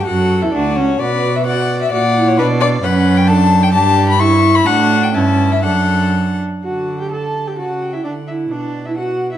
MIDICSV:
0, 0, Header, 1, 5, 480
1, 0, Start_track
1, 0, Key_signature, 2, "major"
1, 0, Tempo, 458015
1, 77, Time_signature, 2, 2, 24, 8
1, 4395, Tempo, 474684
1, 5355, Tempo, 493421
1, 7275, Tempo, 464037
1, 9613, End_track
2, 0, Start_track
2, 0, Title_t, "Violin"
2, 0, Program_c, 0, 40
2, 61, Note_on_c, 0, 78, 97
2, 442, Note_on_c, 0, 76, 83
2, 458, Note_off_c, 0, 78, 0
2, 548, Note_off_c, 0, 76, 0
2, 555, Note_on_c, 0, 74, 94
2, 801, Note_on_c, 0, 73, 101
2, 816, Note_off_c, 0, 74, 0
2, 1045, Note_on_c, 0, 74, 112
2, 1060, Note_off_c, 0, 73, 0
2, 1424, Note_on_c, 0, 76, 94
2, 1440, Note_off_c, 0, 74, 0
2, 1525, Note_off_c, 0, 76, 0
2, 1531, Note_on_c, 0, 78, 109
2, 1890, Note_off_c, 0, 78, 0
2, 1905, Note_on_c, 0, 76, 99
2, 2006, Note_off_c, 0, 76, 0
2, 2013, Note_on_c, 0, 74, 108
2, 2387, Note_on_c, 0, 73, 113
2, 2402, Note_off_c, 0, 74, 0
2, 2488, Note_off_c, 0, 73, 0
2, 2494, Note_on_c, 0, 71, 117
2, 2578, Note_off_c, 0, 71, 0
2, 2730, Note_on_c, 0, 74, 122
2, 2814, Note_off_c, 0, 74, 0
2, 2964, Note_on_c, 0, 78, 115
2, 3326, Note_on_c, 0, 79, 112
2, 3342, Note_off_c, 0, 78, 0
2, 3429, Note_on_c, 0, 81, 124
2, 3445, Note_off_c, 0, 79, 0
2, 3802, Note_on_c, 0, 79, 120
2, 3817, Note_off_c, 0, 81, 0
2, 3901, Note_off_c, 0, 79, 0
2, 3907, Note_on_c, 0, 81, 125
2, 4264, Note_off_c, 0, 81, 0
2, 4284, Note_on_c, 0, 83, 127
2, 4394, Note_on_c, 0, 85, 127
2, 4410, Note_off_c, 0, 83, 0
2, 4753, Note_on_c, 0, 83, 127
2, 4768, Note_off_c, 0, 85, 0
2, 4864, Note_on_c, 0, 78, 127
2, 4879, Note_off_c, 0, 83, 0
2, 5243, Note_on_c, 0, 79, 106
2, 5258, Note_off_c, 0, 78, 0
2, 5353, Note_on_c, 0, 81, 109
2, 5367, Note_off_c, 0, 79, 0
2, 5721, Note_on_c, 0, 76, 103
2, 5735, Note_off_c, 0, 81, 0
2, 5828, Note_off_c, 0, 76, 0
2, 5834, Note_on_c, 0, 78, 101
2, 6555, Note_off_c, 0, 78, 0
2, 6815, Note_on_c, 0, 81, 41
2, 7245, Note_off_c, 0, 81, 0
2, 7279, Note_on_c, 0, 81, 41
2, 7751, Note_off_c, 0, 81, 0
2, 7764, Note_on_c, 0, 81, 41
2, 8005, Note_on_c, 0, 79, 42
2, 8020, Note_off_c, 0, 81, 0
2, 8240, Note_on_c, 0, 78, 41
2, 8255, Note_off_c, 0, 79, 0
2, 8707, Note_off_c, 0, 78, 0
2, 8713, Note_on_c, 0, 78, 45
2, 9186, Note_off_c, 0, 78, 0
2, 9201, Note_on_c, 0, 78, 47
2, 9613, Note_off_c, 0, 78, 0
2, 9613, End_track
3, 0, Start_track
3, 0, Title_t, "Violin"
3, 0, Program_c, 1, 40
3, 71, Note_on_c, 1, 69, 79
3, 571, Note_on_c, 1, 66, 85
3, 587, Note_off_c, 1, 69, 0
3, 1046, Note_off_c, 1, 66, 0
3, 1052, Note_on_c, 1, 71, 94
3, 1523, Note_off_c, 1, 71, 0
3, 1537, Note_on_c, 1, 74, 88
3, 2011, Note_off_c, 1, 74, 0
3, 2022, Note_on_c, 1, 78, 102
3, 2500, Note_on_c, 1, 74, 93
3, 2516, Note_off_c, 1, 78, 0
3, 2970, Note_on_c, 1, 71, 103
3, 2985, Note_off_c, 1, 74, 0
3, 3450, Note_on_c, 1, 69, 88
3, 3466, Note_off_c, 1, 71, 0
3, 3910, Note_off_c, 1, 69, 0
3, 3916, Note_on_c, 1, 67, 106
3, 4399, Note_on_c, 1, 64, 102
3, 4415, Note_off_c, 1, 67, 0
3, 4872, Note_on_c, 1, 66, 99
3, 4887, Note_off_c, 1, 64, 0
3, 5351, Note_off_c, 1, 66, 0
3, 5357, Note_on_c, 1, 64, 81
3, 5830, Note_on_c, 1, 69, 82
3, 5845, Note_off_c, 1, 64, 0
3, 6567, Note_off_c, 1, 69, 0
3, 6808, Note_on_c, 1, 78, 45
3, 7134, Note_off_c, 1, 78, 0
3, 7163, Note_on_c, 1, 79, 50
3, 7262, Note_off_c, 1, 79, 0
3, 7268, Note_on_c, 1, 81, 52
3, 7637, Note_on_c, 1, 79, 46
3, 7652, Note_off_c, 1, 81, 0
3, 7750, Note_off_c, 1, 79, 0
3, 7756, Note_on_c, 1, 78, 52
3, 8114, Note_on_c, 1, 76, 52
3, 8130, Note_off_c, 1, 78, 0
3, 8224, Note_off_c, 1, 76, 0
3, 8230, Note_on_c, 1, 74, 49
3, 8313, Note_off_c, 1, 74, 0
3, 8472, Note_on_c, 1, 76, 52
3, 8555, Note_off_c, 1, 76, 0
3, 8709, Note_on_c, 1, 74, 57
3, 9069, Note_on_c, 1, 76, 57
3, 9085, Note_off_c, 1, 74, 0
3, 9188, Note_off_c, 1, 76, 0
3, 9194, Note_on_c, 1, 78, 57
3, 9547, Note_off_c, 1, 78, 0
3, 9551, Note_on_c, 1, 76, 57
3, 9613, Note_off_c, 1, 76, 0
3, 9613, End_track
4, 0, Start_track
4, 0, Title_t, "Viola"
4, 0, Program_c, 2, 41
4, 73, Note_on_c, 2, 66, 96
4, 444, Note_on_c, 2, 64, 88
4, 460, Note_off_c, 2, 66, 0
4, 562, Note_off_c, 2, 64, 0
4, 568, Note_on_c, 2, 62, 92
4, 807, Note_off_c, 2, 62, 0
4, 815, Note_on_c, 2, 61, 79
4, 1049, Note_off_c, 2, 61, 0
4, 1054, Note_on_c, 2, 66, 79
4, 1500, Note_off_c, 2, 66, 0
4, 1534, Note_on_c, 2, 66, 77
4, 2010, Note_off_c, 2, 66, 0
4, 2025, Note_on_c, 2, 66, 85
4, 2109, Note_off_c, 2, 66, 0
4, 2263, Note_on_c, 2, 64, 78
4, 2499, Note_on_c, 2, 62, 82
4, 2515, Note_off_c, 2, 64, 0
4, 2957, Note_off_c, 2, 62, 0
4, 2964, Note_on_c, 2, 61, 103
4, 3442, Note_on_c, 2, 62, 92
4, 3458, Note_off_c, 2, 61, 0
4, 3913, Note_off_c, 2, 62, 0
4, 3919, Note_on_c, 2, 62, 98
4, 4389, Note_off_c, 2, 62, 0
4, 4396, Note_on_c, 2, 64, 88
4, 4861, Note_off_c, 2, 64, 0
4, 4872, Note_on_c, 2, 62, 104
4, 5322, Note_off_c, 2, 62, 0
4, 5353, Note_on_c, 2, 61, 90
4, 5822, Note_off_c, 2, 61, 0
4, 5829, Note_on_c, 2, 62, 75
4, 6588, Note_off_c, 2, 62, 0
4, 6812, Note_on_c, 2, 66, 58
4, 7137, Note_off_c, 2, 66, 0
4, 7173, Note_on_c, 2, 67, 60
4, 7272, Note_off_c, 2, 67, 0
4, 7278, Note_on_c, 2, 69, 53
4, 7648, Note_on_c, 2, 67, 59
4, 7664, Note_off_c, 2, 69, 0
4, 7748, Note_off_c, 2, 67, 0
4, 7754, Note_on_c, 2, 66, 60
4, 8128, Note_on_c, 2, 64, 60
4, 8144, Note_off_c, 2, 66, 0
4, 8230, Note_off_c, 2, 64, 0
4, 8237, Note_on_c, 2, 62, 57
4, 8319, Note_off_c, 2, 62, 0
4, 8474, Note_on_c, 2, 64, 57
4, 8719, Note_on_c, 2, 62, 69
4, 8734, Note_off_c, 2, 64, 0
4, 9077, Note_off_c, 2, 62, 0
4, 9093, Note_on_c, 2, 64, 63
4, 9138, Note_off_c, 2, 64, 0
4, 9197, Note_on_c, 2, 66, 66
4, 9548, Note_off_c, 2, 66, 0
4, 9576, Note_on_c, 2, 64, 62
4, 9613, Note_off_c, 2, 64, 0
4, 9613, End_track
5, 0, Start_track
5, 0, Title_t, "Cello"
5, 0, Program_c, 3, 42
5, 69, Note_on_c, 3, 42, 92
5, 440, Note_on_c, 3, 40, 84
5, 455, Note_off_c, 3, 42, 0
5, 558, Note_off_c, 3, 40, 0
5, 564, Note_on_c, 3, 38, 95
5, 809, Note_on_c, 3, 37, 81
5, 824, Note_off_c, 3, 38, 0
5, 1045, Note_off_c, 3, 37, 0
5, 1051, Note_on_c, 3, 47, 83
5, 1976, Note_off_c, 3, 47, 0
5, 2020, Note_on_c, 3, 46, 96
5, 2493, Note_on_c, 3, 47, 102
5, 2509, Note_off_c, 3, 46, 0
5, 2960, Note_off_c, 3, 47, 0
5, 2966, Note_on_c, 3, 42, 101
5, 3912, Note_on_c, 3, 43, 98
5, 3927, Note_off_c, 3, 42, 0
5, 4863, Note_off_c, 3, 43, 0
5, 4869, Note_on_c, 3, 45, 109
5, 5356, Note_on_c, 3, 43, 101
5, 5370, Note_off_c, 3, 45, 0
5, 5830, Note_on_c, 3, 42, 86
5, 5845, Note_off_c, 3, 43, 0
5, 6604, Note_off_c, 3, 42, 0
5, 6811, Note_on_c, 3, 50, 44
5, 7759, Note_on_c, 3, 49, 47
5, 7774, Note_off_c, 3, 50, 0
5, 8229, Note_off_c, 3, 49, 0
5, 8235, Note_on_c, 3, 50, 52
5, 8705, Note_off_c, 3, 50, 0
5, 8715, Note_on_c, 3, 47, 50
5, 9613, Note_off_c, 3, 47, 0
5, 9613, End_track
0, 0, End_of_file